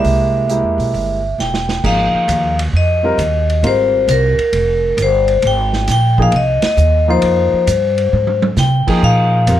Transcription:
Already playing: grand piano G#3 A#3 E4 G4, vibraphone E5
0.04 upright bass C2, open hi-hat
0.49 grand piano G#3 A#3 E4 G4, closed hi-hat
0.64 upright bass E2
0.78 upright bass B1, open hi-hat
0.94 upright bass G1, open hi-hat
1.38 upright bass E1, vibraphone G5, snare
1.54 snare
1.69 snare
1.83 upright bass G#1, grand piano F3 A#3 D#4 G#4, vibraphone F5, kick, crash
2.14 muted upright bass stroke
2.28 upright bass D#2, hi-hat pedal, ride
2.59 ride
2.73 upright bass F2, vibraphone D#5
3.03 grand piano G3 C4 F4 A#4
3.18 upright bass D#2, hi-hat pedal, ride
3.50 ride
3.63 upright bass G#1, grand piano G3 C4 F4 A#4, vibraphone C5, ride
4.08 upright bass C2, vibraphone A#4, hi-hat pedal, ride
4.38 muted upright bass stroke, ride
4.53 upright bass F1, ride
4.97 upright bass G1, hi-hat pedal, ride
5.02 vibraphone C5
5.28 ride
5.42 upright bass G#1, ride
5.47 vibraphone G5
5.73 snare
5.88 upright bass A#1, snare, hi-hat pedal, ride
5.92 vibraphone G5
6.18 grand piano F3 A#3 D#4 G#4, kick
6.22 vibraphone F5
6.32 upright bass C2, ride
6.36 vibraphone D#5
6.62 muted upright bass stroke, snare, ride
6.67 vibraphone D#5
6.77 upright bass D#2, hi-hat pedal
7.08 grand piano F3 A#3 D#4 F4, vibraphone C5
7.22 upright bass F2, ride
7.53 muted upright bass stroke
7.67 upright bass G2, hi-hat pedal, ride
7.98 ride
8.13 upright bass G#2, high tom
8.27 high tom
8.42 high tom
8.56 upright bass C3, vibraphone G5, snare, hi-hat pedal
8.87 grand piano F3 A#3 D#4 G#4, kick, crash
9.03 upright bass A#2, vibraphone F5
9.47 upright bass F2, grand piano G3 C4 F4 A#4, hi-hat pedal, ride

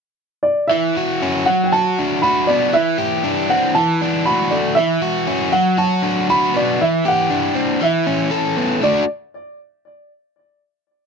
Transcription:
0.43 upright piano D5
0.68 overdriven electric guitar E3, upright piano E5
0.97 overdriven electric guitar F#4
1.22 overdriven electric guitar C#4
1.46 overdriven electric guitar F#3, upright piano F#5
1.64 upright piano G5
1.72 overdriven electric guitar F#4, upright piano A5
1.99 overdriven electric guitar D4
2.22 overdriven electric guitar F#4, upright piano B5
2.47 overdriven electric guitar B3, upright piano D5
2.73 overdriven electric guitar E3, upright piano E5
2.98 overdriven electric guitar G4
3.24 overdriven electric guitar D4
3.49 overdriven electric guitar C4, upright piano F#5
3.75 overdriven electric guitar E3, upright piano A5
4.02 overdriven electric guitar D4
4.25 overdriven electric guitar F#4, upright piano B5
4.51 overdriven electric guitar A3, upright piano D5
4.75 overdriven electric guitar E3, upright piano E5
5.02 overdriven electric guitar F#4
5.27 overdriven electric guitar C#4
5.52 overdriven electric guitar F#3, upright piano F#5
5.77 overdriven electric guitar F#4, upright piano A5
6.02 overdriven electric guitar D4
6.29 overdriven electric guitar F#4, upright piano B5
6.54 overdriven electric guitar B3, upright piano D5
6.81 overdriven electric guitar E3, upright piano E5
7.05 overdriven electric guitar G4, upright piano F#5
7.30 overdriven electric guitar D4
7.55 overdriven electric guitar C4
7.81 overdriven electric guitar E3, upright piano E5
8.07 overdriven electric guitar C#4
8.31 overdriven electric guitar A4
8.57 overdriven electric guitar B3
8.81 overdriven electric guitar A3 D4 F#4, upright piano D5

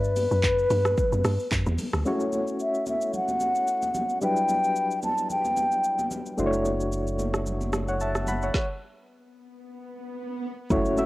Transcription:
Already playing: log drum bass G2, flute B4
0.04 shaker
0.16 open hi-hat, high conga, shaker
0.31 log drum bass F#2, shaker
0.43 kick, clap, shaker
0.58 shaker
0.70 log drum bass G2, open hi-hat, high conga, low conga, shaker
0.85 cross-stick, high conga, shaker
0.97 kick, low conga, shaker
1.12 log drum bass F#2, high conga, shaker
1.24 log drum bass G2, cross-stick, open hi-hat, high conga, shaker
1.39 shaker
1.51 log drum bass F#2, kick, clap, shaker
1.66 log drum bass E2, high conga, shaker
1.78 open hi-hat, high conga, low conga, shaker
1.93 log drum bass D2, cross-stick, shaker
2.05 synth keys G#3 C#4 E4 F#4 C#5, low conga, shaker
2.12 synth keys A3
2.20 shaker
2.32 high conga, shaker
2.48 shaker
2.60 flute E5, shaker
2.75 shaker
2.86 flute E5, high conga, shaker
3.01 shaker
3.13 flute F#5, low conga, shaker
3.28 high conga, shaker
3.40 high conga, shaker
3.55 shaker
3.67 shaker
3.82 high conga, shaker
3.94 high conga, low conga, shaker
4.09 shaker
4.21 synth keys F#3 G3 D4 E4 B4, flute G5, low conga, shaker
4.36 shaker
4.49 high conga, shaker
4.64 shaker
4.76 shaker
4.91 shaker
5.03 flute A5, high conga, shaker
5.18 shaker
5.30 flute G5, low conga, shaker
5.45 high conga, shaker
5.57 high conga, shaker
5.72 shaker
5.84 shaker
5.99 high conga, shaker
6.11 high conga, low conga, shaker
6.26 shaker
6.37 sub bass F#1, synth keys A3 D4 E4 F#4 C5, low conga, shaker
6.46 synth keys C#5
6.53 shaker
6.65 high conga, shaker
6.80 shaker
6.92 shaker
7.07 shaker
7.19 high conga, shaker
7.34 cross-stick, shaker
7.46 low conga, shaker
7.61 high conga, shaker
7.73 cross-stick, high conga, shaker
7.88 synth keys C#5 F#5, shaker
8.00 synth keys E5 A5, shaker
8.15 cross-stick, high conga, shaker
8.27 synth keys F#5 B5, high conga, low conga, shaker
8.42 synth keys C#5 F#5, shaker
8.54 kick, snare, swell
10.70 log drum bass F#1, synth keys A3 C#4 E4 F#4 C#5, kick, impact, low conga, shaker
10.85 shaker
10.97 synth keys A3 C#4 E4 F#4 E5, high conga, shaker

